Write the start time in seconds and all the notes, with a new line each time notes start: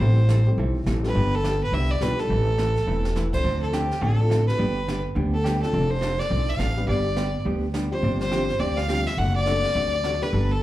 Already playing: C5
0.00 A1 E3 G3 A3 C4 E4 G4 A4, brush sweep
0.29 E3 G3 C4 E4 A4, snare, hi-hat pedal
0.46 G3 A3 C4 E4 G4
0.58 B1 E3 G3 C4 E4 A4, brush sweep
0.86 A1 E3 G3 C4 E4 A4, snare, hi-hat pedal
1.03 G3 B3 D4 F4 A4 B4, snare
1.15 G1 D3 F3 B3 D4 G4, brush sweep
1.35 A4
1.44 D3 F3 B3 D4 G4, snare, hi-hat pedal
1.63 B4
1.72 C2 D3 F3 B3 D4 G4 E5, brush sweep
1.91 D5
2.01 B1 D3 F3 G3 B3 D4 F4 G4 B4, snare, hi-hat pedal
2.19 A4, snare
2.30 A1 E3 A3 C4 E4 B4, brush sweep
2.58 E3 A3 C4 E4 B4, snare, hi-hat pedal
2.76 snare
2.87 E1 E3 A3 C4 E4 B4
3.05 snare
3.15 E3 A3 C4 E4 B4, snare, hi-hat pedal
3.33 A3 C4 D4 F4 A4 C5, kick, crash
3.43 D2 D3 F3 C4 D4 A4, brush sweep
3.62 A4
3.73 D3 F3 C4 D4 G4 A4, snare, hi-hat pedal
3.91 snare
4.01 A1 D3 F3 C4 D4 G#4 A4, brush sweep
4.18 A3 C4 D4 F4 A4
4.29 D3 F3 C4 D4 A4, snare, hi-hat pedal
4.47 B4, snare
4.58 G1 D3 G3 B3 D4 G4, brush sweep
4.87 D3 G3 B3 D4 G4, snare, hi-hat pedal
5.15 D2 D3 G3 B3 D4 G4, brush sweep
5.34 A4
5.45 D3 G3 B3 D4 G4, snare, hi-hat pedal
5.61 A3 C4 D4 F4 A4, snare
5.73 F1 F3 C4 D4 A4, brush sweep
5.91 C5
6.01 F3 C4 D4 A4, snare, hi-hat pedal
6.19 D5, snare
6.30 B1 F3 C4 D4 A4, brush sweep
6.49 E5
6.59 A1 F3 C4 D4 A4 F5, snare, hi-hat pedal
6.77 G3 B3 D4 G4 B4
6.88 G1 D3 G3 B3 D4 G4 D5, brush sweep
7.16 D3 G3 B3 D4 G4, snare, hi-hat pedal
7.45 D2 D3 G3 B3 D4 G4, brush sweep
7.74 D3 G3 B3 D4 G4, snare, hi-hat pedal
7.91 G3 C4 D4 F4 G4 C5
8.03 G1 C3 F3 C4 D4 G4, brush sweep
8.21 C5, snare
8.31 C3 F3 G3 C4 D4 F4 G4, snare, hi-hat pedal
8.49 snare
8.59 D2 C3 F3 C4 D4 G4 D5, brush sweep
8.78 F5, snare
8.88 C3 F3 G3 C4 D4 F4 G4, snare, hi-hat pedal
9.06 E5, snare
9.17 F#1 C3 F#3 A3 D4 F#4 F#5, brush sweep
9.36 D5
9.46 C3 F#3 A3 C4 D4 F#4 A4, snare, hi-hat pedal
9.64 snare
9.75 D2 C3 F#3 A3 D4 F#4, brush sweep
10.04 C3 F#3 A3 D4 F#4, snare, hi-hat pedal
10.21 A3 B3 D4 G4 A4 B4, snare
10.33 G1 G3 B3 D4 A4, brush sweep
10.51 A4